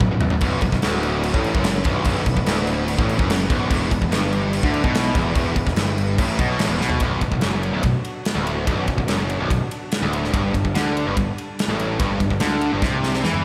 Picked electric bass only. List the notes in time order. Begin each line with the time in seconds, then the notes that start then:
0.01 B0
0.20 A1
0.42 B0
0.62 B0
0.73 B0
0.82 D1
1.34 A1
1.55 F#1
1.85 B0
2.06 B0
2.26 B0
2.37 B0
2.46 D1
2.98 A1
3.19 F#1
3.50 B0
3.70 E1
3.91 E1
4.02 E1
4.12 G1
4.63 D2
4.84 B1
5.15 E1
5.36 E1
5.56 E1
5.67 E1
5.77 G1
6.19 A1
6.39 B1
6.59 A1
6.69 E1
6.79 B1
7.01 B0
7.22 B0
7.32 B0
7.43 F#1
7.74 B0
7.84 B0
8.36 D1
8.67 B0
8.88 B0
8.98 B0
9.08 F#1
9.39 B0
9.50 B0
10.02 D1
10.33 G1
10.55 G1
10.65 G1
10.76 D2
11.07 G1
11.17 G1
11.68 A1
12.00 G1
12.20 G1
12.31 G1
12.42 D2
12.73 G1
12.82 C2
13.24 E2